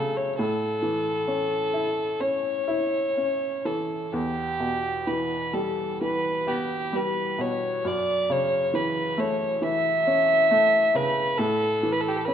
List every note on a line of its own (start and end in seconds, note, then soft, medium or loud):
0.00 0.34 F#2 medium
0.00 0.37 C#3 soft
0.00 0.34 F#3 soft
0.00 0.41 A3 soft
0.00 0.35 C#4 soft
0.00 0.18 A4 medium
0.17 0.38 C#5 medium
0.39 4.09 A2 medium
0.39 2.21 A4 medium
0.82 2.63 E3 soft
1.28 2.19 C#4 soft
1.74 2.66 E4 soft
2.20 3.16 C#4 soft
2.20 3.67 C#5 medium
2.68 4.09 E4 soft
3.17 4.10 C#4 soft
3.65 4.11 E3 soft
3.65 4.14 A4 medium
4.13 7.83 E2 soft
4.13 5.08 G4 medium
4.60 6.44 B2 soft
5.07 6.00 E3 soft
5.07 5.55 B4 medium
5.53 6.91 G3 soft
5.53 6.01 A4 medium
6.01 7.82 E3 soft
6.01 6.50 B4 medium
6.47 7.82 B3 soft
6.47 6.97 G4 medium
6.93 7.83 G3 soft
6.93 7.42 B4 medium
7.38 7.84 B2 soft
7.38 7.88 C#5 medium
7.85 11.35 F#2 medium
7.85 8.33 D5 medium
8.30 10.03 C#3 soft
8.30 8.76 C#5 medium
8.74 9.60 E3 soft
8.74 9.22 B4 medium
9.17 10.49 A3 soft
9.17 9.64 C#5 medium
9.62 11.35 E3 soft
9.62 10.97 E5 loud
10.07 11.35 C#4 medium
10.51 11.37 A3 soft
10.95 11.38 C#3 soft
10.95 11.40 B4 medium
11.38 12.34 A2 medium
11.38 11.93 A4 medium
11.83 12.34 E3 soft
11.92 12.03 B4 medium
12.01 12.10 A4 medium
12.08 12.18 G4 medium
12.17 12.26 A4 medium
12.25 12.34 C#4 soft
12.25 12.34 B4 medium